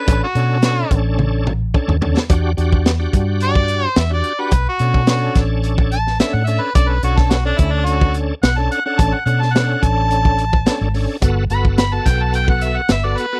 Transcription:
Already playing: C#4 D4 A4 B4
0.08 A1, kick, closed hi-hat
0.24 F#4
0.35 B2 C#4 D4 A4, closed hi-hat
0.62 C#4 D4 F#4 A4, snare, closed hi-hat
0.91 A1, kick, closed hi-hat
1.19 high tom
1.47 mid tom
1.74 C#4 D4 A4, kick
1.88 D#2, mid tom
2.01 C#4 D4 A4, floor tom
2.17 snare
2.29 E2 D4 F#4 G4, kick, closed hi-hat
2.57 E2 D4 F#4 G4, closed hi-hat
2.72 kick
2.86 snare, closed hi-hat
2.99 D4 F#4 G4
3.13 G2, kick, closed hi-hat
3.40 D5, closed hi-hat
3.55 kick
3.68 closed hi-hat
3.87 C5
3.96 E2 E5, snare, closed hi-hat
4.10 D4 F#4 G4 D5
4.24 closed hi-hat
4.39 D4 F#4 G4 B4
4.51 B1, kick, closed hi-hat
4.69 F#4
4.79 B2 C#4 D4 A4, closed hi-hat
4.94 kick
5.07 C#4 D4 F#4 A4, snare, closed hi-hat
5.35 A1, kick, snare, closed hi-hat
5.63 closed hi-hat
5.78 kick
5.92 A5, closed hi-hat
6.07 snare
6.20 C#4 D4 A4 E5, snare, closed hi-hat
6.34 A2 F#5
6.46 C#4 D4 A4 E5, closed hi-hat
6.61 B4
6.75 B1 C#4 D4 A4 D5, kick, closed hi-hat
6.89 B4
7.03 B1 C#4 D4 F#4 A4, closed hi-hat
7.18 A4, kick, snare
7.30 F#4, snare, closed hi-hat
7.45 C#4 D4 A4
7.58 D2 E4, kick, closed hi-hat
7.71 D4
7.85 F#4, closed hi-hat
8.01 kick
8.14 closed hi-hat
8.42 B1 F#5, snare, closed hi-hat
8.57 C#4 D4 A4 A5
8.71 F#5, closed hi-hat
8.85 C#4 D4 A4 F#5
8.99 A1 A5, kick, closed hi-hat
9.14 F#5
9.25 B2 C#4 D4 A4 F#5, closed hi-hat
9.40 A5, snare
9.53 C#4 D4 A4 F#5, snare, closed hi-hat
9.83 A1 A5, kick, closed hi-hat
10.11 closed hi-hat
10.25 kick
10.38 closed hi-hat
10.53 kick
10.66 C#4 D4 A4, snare, closed hi-hat
10.81 G#1
10.94 C#4 D4 A4, open hi-hat
11.21 G1 B3 F#4 A4, kick, closed hi-hat
11.50 G1 B3 F#4 A4 B5, closed hi-hat
11.65 kick
11.78 B5, snare, closed hi-hat
11.92 B3 F#4 A4 A5
12.06 B1 G5, kick, snare, closed hi-hat
12.22 A5
12.34 G5, closed hi-hat
12.48 F#5, kick
12.61 E5, closed hi-hat
12.77 F#5
12.89 G1 E5, snare, closed hi-hat
13.04 B3 F#4 A4 D5
13.18 B4, closed hi-hat
13.32 B3 F#4 A4

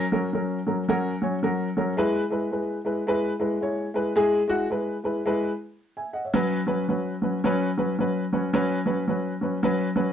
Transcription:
0.12 F#3 C#4 A#4
0.33 F#3 C#4 A#4
0.67 F#3 C#4 A#4 A#5
0.89 F#3 C#4 A#4 F#5
1.22 F#3 C#4 C#5 G#5
1.43 F#3 C#4 A#4 F#5
1.77 F#3 C#4 A#4 C#5
1.97 G#3 E4 B4
2.30 G#3 E4 B4
2.51 G#3 E4 B4
2.85 G#3 E4 B4
3.07 G#3 E4 B4
3.40 G#3 E4 B4
3.61 G#3 E4 C#5
3.94 G#3 E4 B4
4.16 G#3 E4 G#4
4.48 G#3 E4 F#4
4.70 G#3 E4 B4
5.04 G#3 E4 B4
5.26 G#3 E4 B4
5.97 E5 G#5
6.13 D#5 F#5
6.25 C#5 E5
6.34 F#3 C#4 B4
6.67 F#3 C#4 B4
6.89 F#3 C#4 B4
7.22 F#3 C#4 B4
7.44 F#3 C#4 B4
7.77 F#3 C#4 B4
7.99 F#3 C#4 B4
8.32 F#3 C#4 B4
8.53 F#3 C#4 B4
8.86 F#3 C#4 B4
9.08 F#3 C#4 B4
9.41 F#3 C#4 B4
9.63 F#3 C#4 B4
9.96 F#3 C#4 B4

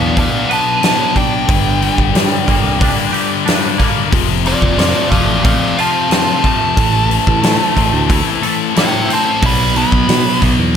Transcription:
Already playing: B2 F#3 B3 D4 D5 F5
0.00 E2
0.14 B2 F#3 B3, kick, open hi-hat
0.19 D5 F5
0.47 B2 F#3 B3 B4, open hi-hat
0.52 F#5 A5
0.82 B2 F#3 B3 F#5 A5, snare, open hi-hat
1.14 B2 F#3 B3 D4 G5, kick, open hi-hat
1.47 G1 G2 D3 G3, kick, open hi-hat
1.81 G2 D3 G3, open hi-hat
1.98 G1, kick
2.14 G2 D3 G3, snare, open hi-hat
2.46 G1 G2 D3 G3 A#3, kick, open hi-hat
2.63 C2
2.80 G2 D3 G3 D4, kick, open hi-hat
3.12 G2 D3 G3 G4, open hi-hat
3.45 G2 D3 G3 D4, snare, open hi-hat
3.78 G2 D3 G3 A#3, kick, open hi-hat
4.10 F1 F2 C3 F3, kick, open hi-hat
4.44 F2 C3 F3 F4 D5, open hi-hat
4.62 F1, kick
4.77 F2 C3 F3 F4 D5, snare, open hi-hat
5.09 F1 F2 C3 F3 A3 D5 F5, kick, open hi-hat
5.27 A1
5.43 F2 C3 F3 C4 D5 F5, kick, open hi-hat
5.78 F2 C3 F3 F4 F5 A5, open hi-hat
6.08 F2 C3 F3 C4, open hi-hat
6.12 F5 A5, snare
6.42 F2 C3 F3 A3, kick, open hi-hat
6.47 A5
6.77 A1 A2 E3 A3, kick, open hi-hat
7.09 A2 E3 A3, open hi-hat
7.27 A1, kick
7.41 A2 E3 A3, snare, open hi-hat
7.75 A1 A2 E3 A3 C4, kick, open hi-hat
7.93 D2
8.08 A2 E3 A3 E4, kick, open hi-hat
8.42 A2 E3 A3 A4, open hi-hat
8.75 A2 E3 A3 E4 E5, snare, open hi-hat
8.80 G5
9.08 A2 E3 A3 C4, open hi-hat
9.13 C5 A5
9.42 B1 B2 F#3 B3 D5 B5, kick, open hi-hat
9.76 B2 F#3 B3 B5, open hi-hat
9.92 B1, kick
10.09 B2 F#3 B3, snare, open hi-hat
10.41 B1 B2 F#3 B3, kick, open hi-hat
10.59 E2

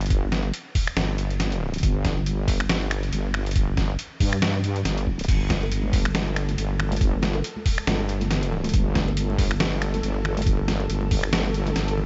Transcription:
Already playing: G1
0.01 closed hi-hat
0.06 closed hi-hat
0.10 kick, closed hi-hat
0.32 snare, closed hi-hat
0.54 closed hi-hat
0.75 kick, open hi-hat
0.87 finger snap
0.97 G1, snare, closed hi-hat
1.18 closed hi-hat
1.30 closed hi-hat
1.40 snare, closed hi-hat
1.52 closed hi-hat
1.74 closed hi-hat
1.78 closed hi-hat
1.83 G1, kick, closed hi-hat
2.05 kick, snare, closed hi-hat
2.26 closed hi-hat
2.48 kick, open hi-hat
2.60 finger snap
2.69 snare, closed hi-hat
2.91 finger snap, closed hi-hat
3.03 closed hi-hat
3.12 G1, closed hi-hat
3.34 finger snap
3.46 closed hi-hat
3.51 closed hi-hat
3.56 kick, closed hi-hat
3.77 kick, snare, closed hi-hat
3.99 closed hi-hat
4.20 G2, kick, open hi-hat
4.33 finger snap
4.42 snare, closed hi-hat
4.64 closed hi-hat
4.76 closed hi-hat
4.85 G1, snare, closed hi-hat
4.98 closed hi-hat
5.07 kick
5.19 closed hi-hat
5.24 closed hi-hat
5.28 G1 A4, kick, closed hi-hat, crash
5.50 kick, snare, closed hi-hat, high conga
5.63 high bongo
5.72 closed hi-hat
5.83 high conga
5.93 kick, open hi-hat
6.05 finger snap
6.15 snare, closed hi-hat, high bongo, high conga
6.36 finger snap, closed hi-hat
6.49 closed hi-hat, high conga
6.58 G1, closed hi-hat
6.79 finger snap, low conga
6.92 closed hi-hat, high conga
6.96 closed hi-hat
7.01 kick, closed hi-hat
7.22 snare, closed hi-hat, high conga
7.35 high bongo
7.44 closed hi-hat
7.57 high conga
7.66 kick, open hi-hat
7.78 finger snap
7.87 G1, snare, closed hi-hat, high conga
8.00 high bongo
8.09 closed hi-hat
8.21 closed hi-hat, high conga
8.31 snare, closed hi-hat
8.43 closed hi-hat
8.52 low conga
8.64 closed hi-hat, high conga
8.69 closed hi-hat
8.74 G1, kick, closed hi-hat
8.95 kick, snare, closed hi-hat, high conga
9.08 high bongo
9.17 closed hi-hat
9.30 high conga
9.38 kick, open hi-hat
9.51 finger snap
9.60 snare, closed hi-hat, high bongo, high conga
9.82 finger snap, closed hi-hat
9.94 closed hi-hat, high conga
10.03 G1, closed hi-hat
10.25 finger snap, low conga
10.37 closed hi-hat, high conga
10.42 closed hi-hat
10.46 kick, closed hi-hat
10.68 snare, closed hi-hat, high conga
10.80 high bongo
10.90 G1, closed hi-hat
11.02 high conga
11.11 kick, open hi-hat
11.23 finger snap
11.32 snare, closed hi-hat, high conga
11.45 high bongo
11.54 closed hi-hat
11.67 closed hi-hat, high conga
11.76 G1, snare, closed hi-hat
11.88 closed hi-hat
11.98 low conga

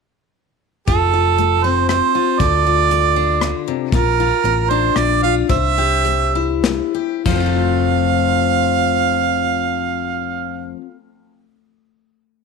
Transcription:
0.87 F1 F3 F4 A4, kick, closed hi-hat
1.14 F4
1.38 A3, closed hi-hat
1.63 C4 C5
1.88 A3 C5, cross-stick, closed hi-hat
2.15 F4
2.39 D2 D3 A4 D5, kick, closed hi-hat
2.67 F4
2.91 A3, closed hi-hat
3.16 D4
3.41 D3, cross-stick, closed hi-hat
3.68 C3
3.92 A#1 A#2 F4 A#4, kick, closed hi-hat
4.20 F4
4.44 A1 A#3, closed hi-hat
4.69 D4 C5
4.96 A#1 A#3 D5, cross-stick, closed hi-hat
5.23 F4 F5
5.49 C2 C3 C5 E5, kick, closed hi-hat
5.78 G4
6.05 G3, closed hi-hat
6.35 E4
6.64 G3, snare, closed hi-hat
6.94 G4
7.25 F1 F3 F5, kick, crash
7.30 A3
7.36 C4
7.40 F4
7.46 A4

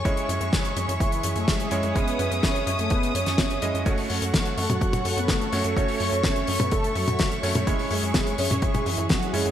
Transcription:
Already playing: C#5 C#6
0.05 F#1 G#3 C#4 E4 G#4 C#5 E5, kick, closed hi-hat
0.17 closed hi-hat
0.29 F#2, closed hi-hat
0.41 F#2, closed hi-hat
0.53 F#1, kick, snare, closed hi-hat
0.65 closed hi-hat
0.76 F#2 G#3 G#4, closed hi-hat
0.88 F#2 E3 E4, closed hi-hat
1.00 F#1 E3 E4, kick, closed hi-hat
1.12 closed hi-hat
1.23 F#2, closed hi-hat
1.36 F#2 A3 A4, closed hi-hat
1.48 F#1 G#3 G#4, kick, snare, closed hi-hat
1.60 closed hi-hat
1.71 F#2 G#3 C#4 E4 C#5, closed hi-hat
1.83 F#2 G#3 G#4, closed hi-hat
1.95 F#1 G#3 B3 C#4 E4 B4 C#5 D#6, kick, closed hi-hat
2.08 closed hi-hat
2.19 F#2, closed hi-hat
2.31 F#2, closed hi-hat
2.43 F#1 C#4 C#5, kick, snare, closed hi-hat
2.55 closed hi-hat
2.67 F#2, closed hi-hat
2.79 F#2 A3 A4, closed hi-hat
2.90 F#1 B3 B4, kick, closed hi-hat
3.03 closed hi-hat
3.15 F#2 C#4 C#5, closed hi-hat
3.26 F#2, snare, closed hi-hat
3.38 F#1, kick, snare, closed hi-hat
3.50 closed hi-hat
3.62 F#2 G#3 C#4 E4 D#5, closed hi-hat
3.74 F#2, closed hi-hat
3.86 F#1 A3 C#4 F#4 A4 C#5 F#5 C#6, kick, closed hi-hat
3.98 open hi-hat
4.10 F#2, open hi-hat
4.22 F#2, closed hi-hat
4.34 F#1, kick, snare, closed hi-hat
4.45 closed hi-hat
4.57 F#2 A3 A4, open hi-hat
4.69 F#2 F#3 F#4, closed hi-hat, high tom
4.81 F#1 F#3 F#4, kick, closed hi-hat
4.93 closed hi-hat, high tom
5.05 F#2, open hi-hat
5.17 F#2 B3 B4, closed hi-hat
5.28 F#1 A3 A4, kick, snare, closed hi-hat
5.41 closed hi-hat
5.53 F#2 A3 C#4 F#4 C#5, open hi-hat
5.64 F#2 A3 A4, closed hi-hat
5.76 F#1 A3 C#4 F#4 C#5 E5, kick, closed hi-hat
5.88 open hi-hat
6.00 F#2, open hi-hat
6.12 F#2, closed hi-hat
6.24 F#1 C#4 C#5, kick, snare, closed hi-hat
6.36 closed hi-hat
6.47 F#2, open hi-hat
6.60 F#2 B3 B4, closed hi-hat, high tom
6.71 F#1 A3 A4, kick, closed hi-hat
6.84 closed hi-hat
6.95 F#2 F#3 F#4, open hi-hat
7.08 F#2, closed hi-hat, high tom
7.19 F#1, kick, snare, closed hi-hat
7.32 closed hi-hat
7.43 F#2 A3 C#4 F#4 C#5, open hi-hat
7.55 F#2, closed hi-hat, high tom
7.67 F#1 G#3 C#4 E4 G#4 C#5, kick, closed hi-hat
7.79 open hi-hat
7.91 F#2 G#3 G#4, open hi-hat
8.03 F#2, closed hi-hat
8.14 F#1, kick, snare, closed hi-hat
8.27 closed hi-hat
8.38 F#2 C#4 C#5, open hi-hat
8.50 F#2, closed hi-hat, high tom
8.62 F#1 G#3 G#4, kick, closed hi-hat
8.74 closed hi-hat, high tom
8.86 F#2 E3 E4, open hi-hat
8.97 F#2, closed hi-hat
9.09 F#1 F#3 F#4, kick, snare, closed hi-hat
9.23 closed hi-hat
9.33 F#2 G#3 C#4 E4 G#4 C#5, open hi-hat
9.45 F#2, closed hi-hat

